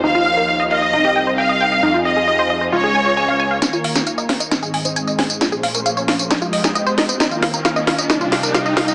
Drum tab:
HH |----------------|----------------|x-oxx-oxx-oxx-ox|x-oxx-oxx-oxx-ox|
TB |----------------|----------------|xx-xxx-xxx-xxx-x|xx-xxx-xxx-xxx-x|
SD |----------------|----------------|o--o--o-o-----o-|o-----o-o--o--o-|

HH |x-oxx-oxx-oxx-ox|
TB |xx-xxx-xxx-xxx-x|
SD |o-o-o-o-o-o-o-o-|